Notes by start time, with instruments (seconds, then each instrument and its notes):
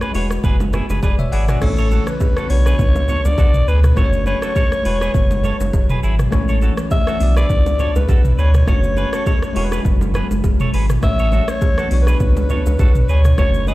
Already playing: tine electric piano A3 C#4 F#4 C#5
0.01 clean electric guitar G#4 B4, cross-stick, shaker
0.12 sub bass E1, tine electric piano G#3 E4 F#4, clean electric guitar G#4 C#5, open hi-hat, high bongo, shaker
0.17 tine electric piano B4
0.31 cross-stick, shaker
0.43 sub bass F#1, clean electric guitar G#4 B4, kick, low conga, shaker
0.60 low bongo, shaker
0.73 clean electric guitar E4 G#4, cross-stick, low conga, shaker
0.90 sub bass F#1, clean electric guitar G#4 B4, low bongo, shaker
1.03 sub bass E1, clean electric guitar G#4 B4, tine electric piano B4 D5, kick, high bongo, shaker
1.19 tine electric piano C#5 E5, mid tom, shaker
1.32 sub bass G#1, clean electric guitar E4 G#4, tine electric piano D5 F#5, open hi-hat, shaker
1.48 clean electric guitar D4 F#4, tine electric piano E5 G#5, cross-stick, mid tom, shaker
1.60 sub bass A1, tine electric piano A3 C#4 E4 C#5, alto saxophone A4, kick, cross-stick, crash, low conga, shaker
1.78 clean electric guitar A4 C#5, shaker
1.91 clean electric guitar F#4 A4, low bongo, shaker
2.07 alto saxophone B4, cross-stick, shaker
2.20 kick, high bongo, shaker
2.37 clean electric guitar F#4 A4, cross-stick, shaker
2.47 sub bass B1, tine electric piano B3 D4 F#4, ambient pad B3 D4, alto saxophone C#5, open hi-hat, shaker
2.52 tine electric piano B4
2.66 clean electric guitar G#4 B4, cross-stick, high bongo, shaker
2.79 sub bass C#2, kick, low conga, shaker
2.95 low bongo, shaker
3.08 clean electric guitar A4 C#5, low conga, shaker
3.25 sub bass C#2, alto saxophone D5, low bongo, shaker
3.38 sub bass B1, clean electric guitar F#4 A4, kick, high bongo, shaker
3.54 mid tom, shaker
3.68 sub bass D2, clean electric guitar G#4 B4, alto saxophone B4, shaker
3.84 cross-stick, mid tom, shaker
3.96 sub bass F#1, ambient pad F#3, tine electric piano A3 C#4 F#4 B4, clean electric guitar A4 C#5, alto saxophone C#5, kick, cross-stick, low conga, shaker
4.05 tine electric piano C#5
4.13 shaker
4.26 clean electric guitar G#4 B4, alto saxophone C#5, low bongo, shaker
4.42 clean electric guitar F#4 A4, cross-stick, shaker
4.56 clean electric guitar A4 C#5, kick, high bongo, shaker
4.72 cross-stick, shaker
4.83 sub bass E1, tine electric piano G#3 E4 F#4, ambient pad G#3 E4, clean electric guitar B4, open hi-hat, shaker
4.87 clean electric guitar G#4, tine electric piano B4
5.01 clean electric guitar G#4 B4, cross-stick, high bongo, shaker
5.14 sub bass F#1, kick, low conga, shaker
5.31 low bongo, shaker
5.44 clean electric guitar A4 C#5, low conga, shaker
5.60 sub bass F#1, low bongo, shaker
5.73 sub bass E1, kick, high bongo, shaker
5.89 clean electric guitar G#4 B4, mid tom, shaker
6.03 sub bass G#1, clean electric guitar E4 G#4, shaker
6.19 cross-stick, mid tom, shaker
6.31 sub bass A1, tine electric piano A3 C#4 E4 C#5, ambient pad E4, kick, cross-stick, low conga, shaker
6.48 clean electric guitar A4 C#5, shaker
6.61 clean electric guitar F#4 A4, low bongo, shaker
6.77 cross-stick, shaker
6.91 alto saxophone E5, kick, high bongo, shaker
7.07 clean electric guitar F#4 A4, cross-stick, shaker
7.18 sub bass B1, tine electric piano B3 D4 F#4, ambient pad B3 D4, open hi-hat, shaker
7.23 tine electric piano D5
7.37 clean electric guitar G#4 B4, alto saxophone D5, cross-stick, high bongo, shaker
7.49 sub bass C#2, kick, low conga, shaker
7.66 low bongo, shaker
7.79 clean electric guitar A4 C#5, low conga, shaker
7.96 sub bass C#2, alto saxophone B4, low bongo, shaker
8.09 sub bass B1, clean electric guitar F#4 A4, kick, high bongo, shaker
8.25 mid tom, shaker
8.38 sub bass D2, clean electric guitar G#4 B4, alto saxophone C#5, shaker
8.54 cross-stick, mid tom, shaker
8.66 sub bass F#1, ambient pad F#3, tine electric piano A3 C#4 F#4 C#5, clean electric guitar A4 C#5, alto saxophone C#5, kick, cross-stick, low conga, shaker
8.84 shaker
8.97 clean electric guitar G#4 B4, low bongo, shaker
9.13 clean electric guitar F#4 A4, cross-stick, shaker
9.26 clean electric guitar A4 C#5, kick, high bongo, shaker
9.43 cross-stick, shaker
9.53 sub bass E1, tine electric piano G#3 E4 F#4, ambient pad G#3 E4, clean electric guitar G#4 C#5, open hi-hat, high bongo, shaker
9.58 tine electric piano A#4
9.65 tine electric piano B4
9.72 clean electric guitar G#4 B4, cross-stick, high bongo, shaker
9.84 sub bass F#1, kick, low conga, shaker
10.01 low bongo, shaker
10.14 clean electric guitar G#4 B4, cross-stick, low conga, shaker
10.31 sub bass F#1, low bongo, shaker
10.44 sub bass E1, kick, high bongo, shaker
10.60 clean electric guitar A4 C#5, mid tom, shaker
10.73 sub bass G#1, clean electric guitar G#4 B4, open hi-hat, shaker
10.90 cross-stick, mid tom, shaker
11.02 sub bass A1, tine electric piano A3 C#4 E4 C#5, ambient pad C#5, alto saxophone E5, kick, cross-stick, low conga, shaker
11.19 clean electric guitar A4 C#5, shaker
11.32 clean electric guitar F#4 A4, low bongo, shaker
11.48 alto saxophone C#5, cross-stick, shaker
11.61 kick, high bongo, shaker
11.78 clean electric guitar F#4 A4, cross-stick, shaker
11.89 sub bass B1, tine electric piano B3 D4 F#4, ambient pad B3 D4, open hi-hat, shaker
11.94 tine electric piano C#5
12.02 alto saxophone B4
12.07 clean electric guitar G#4 B4, cross-stick, high bongo, shaker
12.20 sub bass C#2, kick, low conga, shaker
12.37 low bongo, shaker
12.50 clean electric guitar A4 C#5, low conga, shaker
12.66 sub bass C#2, low bongo, shaker
12.79 sub bass B1, clean electric guitar F#4 A4, kick, high bongo, shaker
12.95 mid tom, shaker
13.09 sub bass D2, clean electric guitar G#4 B4, alto saxophone C#5, shaker
13.25 cross-stick, mid tom, shaker
13.37 sub bass F#1, ambient pad F#3, tine electric piano A3 C#4 F#4 C#5, clean electric guitar A4 C#5, alto saxophone C#5, kick, cross-stick, low conga, shaker
13.54 shaker
13.67 clean electric guitar G#4 B4, alto saxophone E5, low bongo, shaker